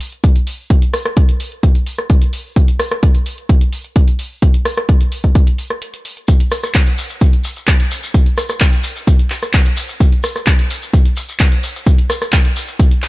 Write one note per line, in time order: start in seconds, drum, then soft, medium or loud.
0.00 open hi-hat loud
0.12 closed hi-hat soft
0.24 kick loud
0.24 closed hi-hat medium
0.36 closed hi-hat medium
0.47 open hi-hat medium
0.70 kick loud
0.70 closed hi-hat medium
0.82 closed hi-hat soft
0.94 cross-stick medium
0.94 open hi-hat medium
1.05 cross-stick medium
1.05 closed hi-hat soft
1.17 kick loud
1.17 closed hi-hat medium
1.29 closed hi-hat soft
1.40 open hi-hat medium
1.52 closed hi-hat soft
1.63 kick loud
1.63 closed hi-hat medium
1.75 closed hi-hat soft
1.86 open hi-hat loud
1.98 cross-stick medium
1.98 closed hi-hat soft
2.10 kick loud
2.10 closed hi-hat medium
2.22 closed hi-hat medium
2.33 open hi-hat medium
2.56 kick loud
2.56 closed hi-hat medium
2.68 closed hi-hat soft
2.80 cross-stick medium
2.80 open hi-hat medium
2.91 cross-stick medium
2.91 closed hi-hat soft
3.03 kick loud
3.03 closed hi-hat medium
3.15 closed hi-hat soft
3.26 open hi-hat medium
3.38 closed hi-hat soft
3.49 kick loud
3.49 closed hi-hat medium
3.61 closed hi-hat medium
3.72 open hi-hat medium
3.84 closed hi-hat soft
3.96 kick loud
3.96 closed hi-hat medium
4.08 closed hi-hat medium
4.19 open hi-hat medium
4.42 kick loud
4.42 closed hi-hat medium
4.54 closed hi-hat medium
4.65 cross-stick medium
4.65 open hi-hat medium
4.77 cross-stick medium
4.77 closed hi-hat soft
4.89 kick loud
4.89 closed hi-hat medium
5.01 closed hi-hat soft
5.12 open hi-hat medium
5.24 kick medium
5.24 closed hi-hat soft
5.35 kick loud
5.35 closed hi-hat medium
5.47 closed hi-hat medium
5.58 open hi-hat medium
5.70 cross-stick medium
5.70 closed hi-hat soft
5.82 closed hi-hat medium
5.94 closed hi-hat medium
6.05 open hi-hat medium
6.17 closed hi-hat soft
6.28 kick loud
6.28 closed hi-hat medium
6.28 shekere soft
6.40 closed hi-hat medium
6.51 cross-stick medium
6.51 open hi-hat loud
6.51 shekere medium
6.63 cross-stick medium
6.63 closed hi-hat soft
6.63 shekere medium
6.74 kick loud
6.74 clap loud
6.74 closed hi-hat medium
6.74 shekere soft
6.87 closed hi-hat soft
6.98 open hi-hat medium
6.98 shekere medium
7.10 closed hi-hat soft
7.10 shekere soft
7.21 kick loud
7.21 closed hi-hat medium
7.21 shekere soft
7.33 closed hi-hat soft
7.44 open hi-hat loud
7.44 shekere medium
7.56 closed hi-hat soft
7.56 shekere soft
7.67 kick loud
7.67 clap loud
7.67 closed hi-hat medium
7.67 shekere soft
7.80 closed hi-hat medium
7.91 open hi-hat medium
7.91 shekere medium
8.03 shekere medium
8.14 kick loud
8.14 closed hi-hat medium
8.14 shekere soft
8.26 closed hi-hat soft
8.38 cross-stick medium
8.38 open hi-hat loud
8.38 shekere medium
8.49 cross-stick medium
8.49 closed hi-hat soft
8.49 shekere soft
8.60 kick loud
8.60 clap loud
8.60 closed hi-hat medium
8.60 shekere soft
8.73 closed hi-hat soft
8.83 open hi-hat medium
8.83 shekere medium
8.96 closed hi-hat soft
8.96 shekere medium
9.07 kick loud
9.07 closed hi-hat medium
9.07 shekere soft
9.19 closed hi-hat soft
9.30 clap soft
9.30 open hi-hat loud
9.30 shekere medium
9.42 cross-stick medium
9.42 closed hi-hat soft
9.42 shekere soft
9.53 kick loud
9.53 clap loud
9.53 closed hi-hat medium
9.53 shekere soft
9.66 closed hi-hat medium
9.77 open hi-hat loud
9.77 shekere loud
9.88 shekere medium
10.00 kick loud
10.00 closed hi-hat medium
10.00 shekere soft
10.12 closed hi-hat soft
10.24 cross-stick medium
10.24 open hi-hat loud
10.24 shekere loud
10.36 cross-stick medium
10.36 closed hi-hat soft
10.36 shekere medium
10.46 kick loud
10.46 clap loud
10.46 closed hi-hat medium
10.46 shekere soft
10.59 closed hi-hat soft
10.70 open hi-hat loud
10.70 shekere medium
10.82 closed hi-hat soft
10.82 shekere soft
10.93 kick loud
10.93 closed hi-hat medium
10.93 shekere soft
11.05 closed hi-hat soft
11.17 open hi-hat loud
11.17 shekere loud
11.29 closed hi-hat soft
11.29 shekere medium
11.39 kick loud
11.39 clap loud
11.39 closed hi-hat medium
11.39 shekere soft
11.52 closed hi-hat medium
11.63 open hi-hat medium
11.63 shekere medium
11.76 shekere medium
11.86 kick loud
11.86 closed hi-hat medium
11.86 shekere soft
11.98 closed hi-hat soft
12.10 cross-stick medium
12.10 open hi-hat loud
12.10 shekere medium
12.22 cross-stick medium
12.22 closed hi-hat soft
12.22 shekere medium
12.32 kick loud
12.32 clap loud
12.32 closed hi-hat medium
12.32 shekere soft
12.45 closed hi-hat soft
12.56 open hi-hat medium
12.56 shekere medium
12.68 closed hi-hat soft
12.68 shekere medium
12.79 kick loud
12.79 closed hi-hat medium
12.79 shekere soft
12.91 closed hi-hat soft
13.02 clap soft
13.02 open hi-hat loud
13.02 shekere medium